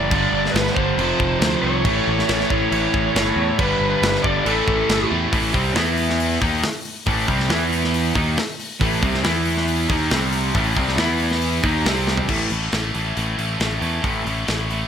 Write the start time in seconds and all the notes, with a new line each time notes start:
Already playing: F#1 A2 E3 A3 D5
0.10 G1 G2 D3 G3, kick, crash
0.32 G1
0.46 snare
0.51 G1 B4
0.55 snare, crash
0.67 snare
0.73 G1 D3 G3 C5, kick
0.78 G2
0.97 F1 F2 C3 F3, crash
1.20 F1, kick
1.40 D2 C5, snare, crash
1.62 C2 F2 C3 F3 C#5
1.84 A1 A2 E3 A3, kick, crash
2.08 A1
2.19 snare
2.29 A1, snare, crash
2.40 snare
2.49 A1 A2 E3 A3 C#5, kick
2.71 A1 A2 E3 A3, crash
2.93 A1 A2 E3 A3, kick
3.14 G1 A2 E3 A3 C#5, snare, crash
3.36 E2
3.58 G1 G2 D3 G3 B4, kick, crash
3.80 G1
3.90 B4
4.02 G1, snare, crash
4.15 snare
4.23 G1 G2 D3 G3 D5, kick
4.44 A1 A2 E3 A3 A4, crash
4.68 A1, kick
4.89 G1, snare, crash
5.10 E2 A2 E3 A3
5.33 A1 A2 E3 A3, kick, open hi-hat
5.54 C2 C3 G3 C4, kick, open hi-hat
5.75 E2 E3 B3 E4, snare, open hi-hat
5.97 open hi-hat
6.09 snare
6.20 open hi-hat
6.41 D#2 D#3 A#3 D#4, kick, open hi-hat
6.63 snare, open hi-hat
6.85 open hi-hat
7.06 A1 A2 E3 A3, kick, open hi-hat
7.28 C2 C3 G3 C4, kick
7.40 snare
7.50 E2 E3 B3 E4, snare, open hi-hat
7.72 open hi-hat
7.84 snare
7.94 open hi-hat
8.15 D#2 D#3 A#3 D#4, kick, open hi-hat
8.37 snare, open hi-hat
8.59 open hi-hat
8.81 A1 A2 E3 A3, kick, open hi-hat
9.03 C2 C3 G3 C4, kick
9.14 snare
9.24 E2 E3 B3 E4, snare, open hi-hat
9.45 open hi-hat
9.57 snare
9.68 open hi-hat
9.90 D#2 D#3 A#3 D#4, kick, open hi-hat
10.11 C2 C3 G3 C4, snare, open hi-hat
10.32 open hi-hat
10.54 A1 A2 E3 A3, kick, open hi-hat
10.76 C2 C3 G3 C4, kick, open hi-hat
10.88 snare
10.97 E2 E3 B3 E4, snare, open hi-hat
11.20 open hi-hat
11.31 snare
11.42 open hi-hat
11.64 D#2 D#3 A#3 D#4, kick, open hi-hat
11.85 C2 C3 G3 C4, snare, open hi-hat
12.07 snare
12.17 floor tom
12.29 A1 A2 E3 A3, kick, crash
12.50 A1 A2 E3 A3, open hi-hat
12.72 A1 A2 E3 A3, snare, open hi-hat
12.94 A1 A2 E3 A3, open hi-hat
13.15 A1 A2 E3 A3, open hi-hat
13.37 A1 A2 E3 A3, open hi-hat
13.59 A1 A2 E3 A3, snare, open hi-hat
13.80 E2 A2 E3 A3, open hi-hat
14.03 A1 A2 E3 A3, kick, open hi-hat
14.25 A1 A2 E3 A3, open hi-hat
14.46 A1 A2 E3 A3, snare, open hi-hat
14.69 A2 E3 A3, open hi-hat